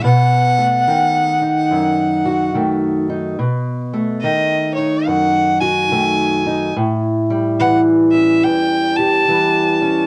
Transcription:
0.03 B2 F#5
0.59 A3
0.88 D#3
1.41 D#4
1.71 F#2
2.25 F#4
2.55 D#3 A3
3.10 D#4
3.39 B2
3.94 A3
4.21 D#3 D#5
4.74 D#4 C#5
5.07 F#2 F#5
5.60 F#4 G#5
5.91 D#3 A3
6.46 D#4
6.76 A2
7.30 G3
7.60 E3 F#5
8.12 C#4 E5
8.43 E2 G5
8.96 G4 A5
9.28 E3 G3
9.81 C#4

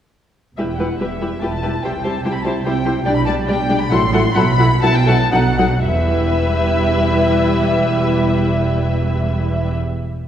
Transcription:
0.57 E1 E2 G3 E4 G4 B4 E5
0.68 G5
0.78 G3 E4 G4 B4 F#5
1.00 E1 E2 G3 E4 G4 B4 E5
1.21 G3 E4 G4 B4
1.42 E1 E2 G3 E4 G4 B4 A5
1.63 G3 E4 G4 B4
1.83 C2 C3 G3 E4 G4 C5 G5
2.04 G3 E4 G4 C5 A5
2.24 C2 C3 G3 E4 G4 C5 G5
2.35 B5
2.44 G3 E4 G4 C5 A5
2.64 C2 C3 G3 E4 G4 C5 G5
2.85 G3 E4 G4 C5
3.05 B1 B2 G3 D4 G4 D5 G5
3.16 B5
3.26 G3 D4 G4 D5 A5
3.48 B1 B2 G3 D4 G4 D5 G5
3.69 G3 D4 G4 D5
3.80 B5
3.91 A1 A2 F#3 E4 A4 F#5 C6
4.13 F#3 E4 A4 F#5
4.35 B1 B2 F#3 E4 A4 F#5 B5
4.58 F#3 E4 A4 F#5
4.82 B1 B2 F#3 E4 A4 F#5 A5
4.95 G5
5.07 F#3 E4 A4 F#5 A5
5.32 B1 B2 F#3 D#4 A4 F#5
5.58 F#3 D#4 A4 F#5
5.83 E1 E2 G3 E4 B4 E5

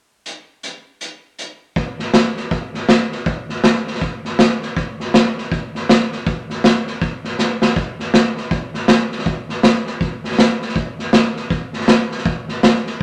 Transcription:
0.26 closed hi-hat
0.63 closed hi-hat
1.01 closed hi-hat
1.39 closed hi-hat
1.76 kick, snare
1.99 snare
2.14 snare, hi-hat pedal
2.37 snare
2.51 kick, snare
2.74 snare
2.89 snare, hi-hat pedal
3.12 snare
3.26 kick, snare
3.49 snare
3.64 snare, hi-hat pedal
3.87 snare
3.95 snare
4.01 kick, snare
4.25 snare
4.39 snare, hi-hat pedal
4.62 snare
4.77 kick, snare
5.00 snare
5.14 snare, hi-hat pedal
5.38 snare
5.52 kick, snare
5.75 snare
5.89 snare, hi-hat pedal
6.12 snare
6.26 kick, snare
6.50 snare
6.64 snare, hi-hat pedal
6.87 snare
7.01 kick, snare
7.24 snare
7.39 snare, hi-hat pedal
7.62 snare
7.76 kick, snare
8.00 snare
8.14 snare, hi-hat pedal
8.37 snare
8.51 kick, snare
8.74 snare
8.88 snare, hi-hat pedal
9.12 snare
9.19 snare
9.26 kick, snare
9.49 snare
9.63 snare, hi-hat pedal
9.87 snare
10.01 kick, snare
10.24 snare
10.31 snare
10.39 snare, hi-hat pedal
10.62 snare
10.69 snare
10.76 kick, snare
10.99 snare
11.13 snare, hi-hat pedal
11.36 snare
11.50 kick, snare
11.73 snare
11.80 snare
11.88 snare, hi-hat pedal
12.11 snare
12.18 snare
12.25 kick, snare
12.49 snare
12.63 snare, hi-hat pedal
12.87 snare

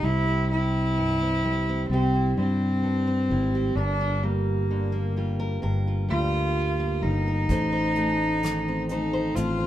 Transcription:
Already playing: G4
0.03 C2 C3 C4 E4
0.28 C4
0.51 G3 E4
0.98 G2
1.21 C4
1.44 G3 C4
1.69 C4
1.90 C2 C3 C4 G4
2.15 E4
2.37 G2 G3 C4
2.83 G2
3.07 C4
3.30 G#1 G3 E4
3.55 G4
3.75 G1 G2 D4 A#4
4.01 F4
4.23 G3 A#3
4.71 D3
4.92 A#3
5.17 G3 F4
5.40 A#4
5.62 G1 G2 A#4
5.88 F4
6.09 D2 G3 F4
6.80 A#3
7.02 G1 G3 D#4 F4
7.28 A#4
7.49 A1 A2 C5, kick, closed hi-hat
7.73 C5
7.96 A3, closed hi-hat
8.43 D#3, cross-stick, closed hi-hat
8.68 C4
8.89 A3 D#4 C5, closed hi-hat
9.13 C5
9.35 A1 A2 C4 F4, closed hi-hat
9.60 C4

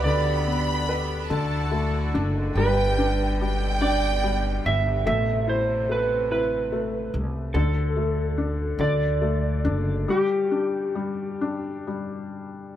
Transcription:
Already playing: B3 G4
0.04 D2 D3 D4 D5 B5
0.47 B3
0.89 B4
1.30 D2 D3 E4 F#4 A4 A5
1.72 A3
2.14 F#1 D4
2.55 G1 B2 G3 B4 G5
2.98 D4
3.41 G3 G5
3.81 D4 D5
4.23 G3
4.66 G1 E5
5.06 A1 C3 A3 E5
5.47 E4 C5
5.89 A3 B4
6.31 E4 B4
6.72 A3
7.14 C2
7.54 D2 D3 A4
7.97 A3
8.38 D4
8.79 D2 D3 D5
9.22 A3
9.65 F#1 D4
10.08 G3 G4
10.51 D4
10.95 G3
11.41 D4
11.87 G3

